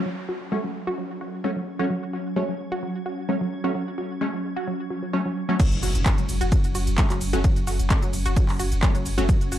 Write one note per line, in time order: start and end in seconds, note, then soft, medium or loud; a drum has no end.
0.00 5.59 F#3 medium
0.00 5.59 C#4 medium
0.00 downlifter medium
0.06 0.10 F#3 medium
0.29 0.36 F#4 medium
0.52 0.58 F#3 medium
0.52 0.59 G#3 medium
0.52 0.58 A3 medium
0.52 0.58 C#4 loud
0.64 0.73 F#3 medium
0.87 0.96 F#4 loud
0.98 1.02 F#3 medium
1.21 1.28 F#4 medium
1.44 1.51 F#3 medium
1.44 1.51 G#3 medium
1.44 1.51 A3 medium
1.44 1.51 C#4 loud
1.56 1.65 F#3 medium
1.79 1.85 F#3 loud
1.79 1.85 A3 medium
1.79 1.85 C#4 loud
1.79 1.88 F#4 loud
1.90 1.94 F#3 medium
2.13 2.20 F#4 medium
2.36 2.43 F#3 medium
2.36 2.43 G#3 medium
2.36 2.43 A3 medium
2.36 2.43 C#4 loud
2.49 2.58 F#3 medium
2.72 2.81 F#4 loud
2.83 2.87 F#3 medium
3.06 3.13 F#4 medium
3.29 3.35 F#3 medium
3.29 3.36 G#3 medium
3.29 3.35 A3 medium
3.29 3.35 C#4 loud
3.41 3.50 F#3 medium
3.64 3.70 F#3 medium
3.64 3.70 A3 medium
3.64 3.70 C#4 loud
3.64 3.73 F#4 loud
3.75 3.79 F#3 medium
3.98 4.05 F#4 medium
4.21 4.28 F#3 medium
4.21 4.28 G#3 medium
4.21 4.28 A3 medium
4.21 4.28 C#4 loud
4.33 4.42 F#3 medium
4.56 4.65 F#4 loud
4.67 4.71 F#3 medium
4.90 4.97 F#3 medium
5.03 5.09 F#3 medium
5.13 5.20 F#3 medium
5.13 5.20 A3 medium
5.13 5.20 C#4 loud
5.26 5.32 F#3 medium
5.49 5.55 F#3 loud
5.49 5.55 F#3 medium
5.49 5.55 A3 medium
5.49 5.55 C#4 loud
5.60 5.64 F#3 medium
5.60 9.59 F#3 medium
5.60 9.59 C#4 medium
5.60 kick loud
5.60 closed hi-hat medium
5.60 crash loud
5.60 ride medium
5.60 impact medium
5.60 shaker soft
5.72 5.82 F#1 medium
5.72 closed hi-hat medium
5.83 5.94 F#1 loud
5.83 5.89 F#4 medium
5.83 open hi-hat loud
5.83 ride medium
5.83 shaker medium
5.95 6.06 F#1 medium
5.95 closed hi-hat medium
5.95 shaker soft
6.06 6.12 F#3 medium
6.06 6.13 G#3 medium
6.06 6.12 A3 medium
6.06 6.12 C#4 loud
6.06 kick loud
6.06 clap loud
6.06 closed hi-hat loud
6.06 ride medium
6.06 shaker soft
6.18 6.28 F#1 medium
6.18 6.27 F#3 medium
6.18 closed hi-hat medium
6.29 6.40 F#1 loud
6.29 open hi-hat loud
6.29 ride medium
6.29 shaker medium
6.41 6.52 F#1 medium
6.41 6.50 F#4 loud
6.41 closed hi-hat medium
6.41 shaker soft
6.52 6.56 F#3 medium
6.52 kick loud
6.52 closed hi-hat loud
6.52 ride medium
6.52 shaker soft
6.64 6.74 F#1 medium
6.64 closed hi-hat medium
6.64 shaker soft
6.75 6.87 F#1 loud
6.75 6.82 F#4 medium
6.75 open hi-hat loud
6.75 ride medium
6.75 shaker medium
6.87 6.98 F#1 medium
6.87 closed hi-hat medium
6.87 shaker soft
6.98 7.05 F#3 loud
6.98 7.05 G#3 medium
6.98 7.05 A3 medium
6.98 7.05 C#4 loud
6.98 kick loud
6.98 clap loud
6.98 closed hi-hat medium
6.98 ride medium
6.98 shaker soft
7.10 7.21 F#1 medium
7.10 7.19 F#3 medium
7.10 clap soft
7.10 closed hi-hat medium
7.10 shaker soft
7.21 7.33 F#1 loud
7.21 open hi-hat loud
7.21 ride medium
7.21 shaker medium
7.33 7.44 F#1 medium
7.33 7.39 F#3 loud
7.33 7.39 A3 medium
7.33 7.39 C#4 loud
7.33 7.42 F#4 loud
7.33 closed hi-hat medium
7.33 shaker soft
7.44 7.48 F#3 medium
7.44 kick loud
7.44 closed hi-hat loud
7.44 ride medium
7.44 shaker soft
7.56 7.67 F#1 medium
7.56 closed hi-hat medium
7.56 shaker soft
7.67 7.79 F#1 loud
7.67 7.74 F#4 medium
7.67 open hi-hat loud
7.67 ride medium
7.67 shaker medium
7.79 7.90 F#1 medium
7.79 closed hi-hat medium
7.79 shaker soft
7.90 7.97 F#3 loud
7.90 7.97 G#3 medium
7.90 7.97 A3 medium
7.90 7.97 C#4 loud
7.90 kick loud
7.90 clap loud
7.90 closed hi-hat loud
7.90 ride medium
7.90 shaker soft
8.02 8.13 F#1 medium
8.02 8.12 F#3 medium
8.02 closed hi-hat medium
8.13 8.25 F#1 loud
8.13 open hi-hat loud
8.13 ride medium
8.13 shaker medium
8.26 8.36 F#1 medium
8.26 8.35 F#4 loud
8.26 closed hi-hat medium
8.26 shaker soft
8.36 8.41 F#3 medium
8.36 kick loud
8.36 closed hi-hat loud
8.36 ride medium
8.36 shaker soft
8.49 8.59 F#1 medium
8.49 clap soft
8.49 open hi-hat medium
8.49 shaker soft
8.60 8.71 F#1 loud
8.60 8.66 F#4 medium
8.60 open hi-hat loud
8.60 ride medium
8.60 shaker medium
8.72 8.83 F#1 medium
8.72 closed hi-hat medium
8.72 shaker soft
8.83 8.89 F#3 medium
8.83 8.89 G#3 medium
8.83 8.89 A3 medium
8.83 8.89 C#4 loud
8.83 kick loud
8.83 clap loud
8.83 closed hi-hat loud
8.83 ride medium
8.83 shaker soft
8.95 9.05 F#1 medium
8.95 9.04 F#3 medium
8.95 closed hi-hat medium
8.95 shaker soft
9.06 9.18 F#1 loud
9.06 open hi-hat loud
9.06 ride medium
9.06 shaker medium
9.18 9.29 F#1 medium
9.18 9.24 F#3 loud
9.18 9.24 A3 medium
9.18 9.24 C#4 loud
9.18 9.27 F#4 loud
9.18 closed hi-hat medium
9.18 shaker soft
9.29 9.33 F#3 medium
9.29 kick loud
9.29 closed hi-hat medium
9.29 ride medium
9.29 shaker soft
9.41 9.51 F#1 medium
9.41 closed hi-hat medium
9.52 9.59 F#1 loud
9.52 9.59 F#4 medium
9.52 open hi-hat loud
9.52 ride medium
9.52 shaker medium